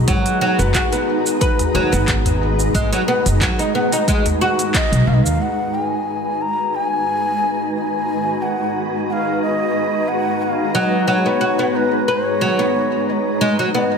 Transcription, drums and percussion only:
0.08 kick, closed hi-hat, shaker
0.26 closed hi-hat, shaker
0.60 shaker
0.74 kick, clap, closed hi-hat, shaker
0.93 closed hi-hat, shaker
1.26 shaker
1.41 kick, closed hi-hat, shaker
1.59 closed hi-hat, udu, shaker
1.93 shaker
2.08 kick, clap, closed hi-hat, shaker
2.25 closed hi-hat, udu, shaker
2.60 shaker
2.75 kick, closed hi-hat, shaker
2.93 closed hi-hat, shaker
3.26 closed hi-hat, shaker
3.41 kick, clap, closed hi-hat, shaker
3.59 closed hi-hat, shaker
3.92 closed hi-hat, shaker
4.08 kick, closed hi-hat, shaker
4.26 closed hi-hat, udu, shaker
4.59 closed hi-hat, shaker
4.74 kick, clap, closed hi-hat, shaker
4.93 closed hi-hat, shaker
5.26 udu, shaker

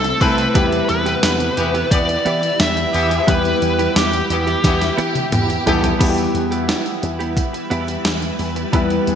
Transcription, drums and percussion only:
0.04 closed hi-hat
0.21 kick, open hi-hat
0.38 closed hi-hat
0.55 kick, closed hi-hat
0.72 closed hi-hat
0.89 closed hi-hat
1.06 closed hi-hat
1.23 snare, closed hi-hat, tambourine
1.40 closed hi-hat
1.57 closed hi-hat
1.75 closed hi-hat
1.91 kick, closed hi-hat
2.09 closed hi-hat
2.26 closed hi-hat
2.43 closed hi-hat
2.60 snare, closed hi-hat, tambourine
2.77 closed hi-hat
2.94 open hi-hat
3.11 closed hi-hat
3.28 kick, closed hi-hat
3.45 closed hi-hat
3.62 closed hi-hat
3.79 closed hi-hat
3.96 snare, closed hi-hat, tambourine
4.13 closed hi-hat
4.30 closed hi-hat
4.48 closed hi-hat
4.64 kick, snare, closed hi-hat
4.81 snare, closed hi-hat
4.98 closed hi-hat
5.15 closed hi-hat, high tom
5.32 closed hi-hat, mid tom
5.50 closed hi-hat
5.67 closed hi-hat, floor tom
5.84 closed hi-hat, floor tom
6.01 kick, closed hi-hat, crash
6.18 closed hi-hat
6.35 closed hi-hat
6.52 closed hi-hat
6.69 snare, closed hi-hat
6.86 closed hi-hat
7.03 closed hi-hat
7.20 closed hi-hat
7.37 kick, closed hi-hat
7.54 closed hi-hat
7.71 closed hi-hat
7.88 closed hi-hat
8.05 snare, closed hi-hat
8.22 closed hi-hat
8.39 open hi-hat
8.56 closed hi-hat
8.73 kick, closed hi-hat
8.90 closed hi-hat
9.07 closed hi-hat

